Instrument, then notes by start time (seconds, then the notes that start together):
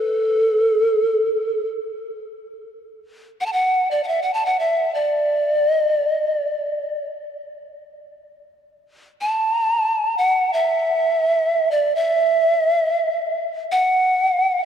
pan flute
Already playing: A4
3.41 F#5
3.46 A5
3.53 F#5
3.91 D5
4.04 F#5
4.08 E5
4.22 F#5
4.34 A5
4.46 F#5
4.59 E5
4.94 D5
5.68 D#5
5.89 D5
6.10 D#5
6.31 D5
9.21 A5
10.18 F#5
10.53 E5
11.71 D5
11.95 E5
13.72 F#5